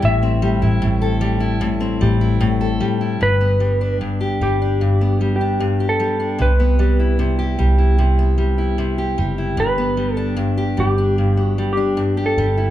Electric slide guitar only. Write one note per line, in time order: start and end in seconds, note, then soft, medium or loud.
0.05 1.59 E5 medium
3.23 3.98 B4 medium
4.43 5.35 G4 medium
5.36 5.84 G4 medium
5.89 6.38 A4 medium
6.42 7.17 B4 medium
9.60 10.15 B4 medium
10.15 10.35 A4 medium
10.80 11.44 G4 medium
11.44 11.72 F#4 medium
11.73 12.21 G4 medium
12.26 12.70 A4 medium